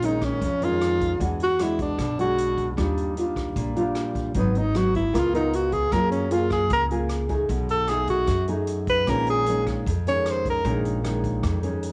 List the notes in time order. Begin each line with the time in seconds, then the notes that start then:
Already playing: A#1 A#2
0.02 D#3 G#3 C#4 D#4, closed hi-hat
0.21 C#4, kick, cross-stick, closed hi-hat
0.41 F2, kick, closed hi-hat
0.62 D#3 G#3 C#4 F4, closed hi-hat
0.81 cross-stick, closed hi-hat
1.01 kick, closed hi-hat
1.19 E2 E3 G#3 D4 F#4, kick, closed hi-hat
1.40 F#4, closed hi-hat
1.59 G#3 D4 E4 F#4, cross-stick, closed hi-hat
1.79 D4, kick, closed hi-hat
1.98 B1 B2, kick, cross-stick, closed hi-hat
2.19 G#3 D4 F#4, closed hi-hat
2.38 closed hi-hat
2.58 kick, closed hi-hat
2.77 D#2 D#3 G3 D4 F4, kick, cross-stick, closed hi-hat
2.97 closed hi-hat
3.17 G3 D4 F4, closed hi-hat
3.36 kick, cross-stick, closed hi-hat
3.56 A#1 A#2, kick, closed hi-hat
3.76 G3 D4 F4, closed hi-hat
3.95 cross-stick, closed hi-hat
4.15 kick, closed hi-hat
4.34 G#1 G#2 F#3 B3 D#4, kick, closed hi-hat
4.55 D#4, closed hi-hat
4.74 F#3 B3 D#4 F#4, cross-stick, closed hi-hat
4.94 E4, kick, closed hi-hat
5.13 C#2 C#3 B3 F4 A#4, kick, cross-stick, closed hi-hat
5.19 F4
5.33 B3 D#4 F4 A#4, closed hi-hat
5.53 F#4, closed hi-hat
5.72 G#4, kick, closed hi-hat
5.92 F#2 F#3 A#3 F4 G#4 A#4, kick, cross-stick, closed hi-hat
6.11 C#4, closed hi-hat
6.31 A#3 F4 G#4, closed hi-hat
6.50 G#4, kick, cross-stick, closed hi-hat
6.70 C#2 C#3 A#4, kick, closed hi-hat
6.91 A#3 F4 G#4, closed hi-hat
7.09 cross-stick, closed hi-hat
7.29 A3 D#4 G#4, kick, closed hi-hat
7.49 B1 B2, kick, closed hi-hat
7.69 A4, closed hi-hat
7.88 A3 D#4 G#4, cross-stick, closed hi-hat
8.07 F#4, kick, closed hi-hat
8.27 F#2, kick, cross-stick, closed hi-hat
8.47 A3 D#4 G#4, closed hi-hat
8.67 closed hi-hat
8.87 B4, kick, closed hi-hat
9.07 A#1 A#2 D#3 G#3 C#4 A#4, kick, cross-stick, closed hi-hat
9.27 G#4, closed hi-hat
9.46 D#3 G#3 C#4, closed hi-hat
9.67 kick, cross-stick, closed hi-hat
9.86 F2, kick, closed hi-hat
10.07 D#3 G#3 C#4 C#5, closed hi-hat
10.26 cross-stick, closed hi-hat
10.31 C5
10.45 kick, closed hi-hat
10.50 A#4
10.65 A#1 A#2 D#3 G#3 C#4, kick, closed hi-hat
10.85 closed hi-hat
11.03 D#3 G#3 C#4, cross-stick, closed hi-hat
11.24 kick, closed hi-hat
11.43 F2, kick, cross-stick, closed hi-hat
11.63 D#3 G#3 C#4, closed hi-hat
11.83 closed hi-hat